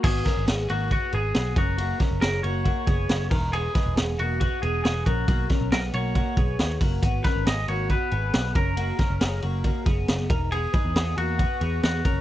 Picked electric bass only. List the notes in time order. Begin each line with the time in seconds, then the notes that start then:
0.04 G#1
0.37 G#1
0.48 G#1
0.70 G#1
1.13 G#1
1.35 B1
1.57 F#1
2.11 F#1
2.22 F#1
2.44 F#1
2.88 F#1
3.10 F#1
3.31 E1
3.86 E1
3.98 E1
4.19 E1
4.63 E1
4.85 E1
5.07 A#1
5.28 B1
5.61 B1
5.72 B1
5.94 B1
6.37 B1
6.60 D#2
6.81 F#1
7.03 G#1
7.36 G#1
7.47 G#1
7.68 G#1
8.12 G#1
8.34 B1
8.55 F#1
9.10 F#1
9.21 F#1
9.43 F#1
9.86 F#1
10.09 F#1
10.30 E1
10.85 E2
10.96 E2
11.17 E2
11.61 E2
11.83 E2
12.05 F#1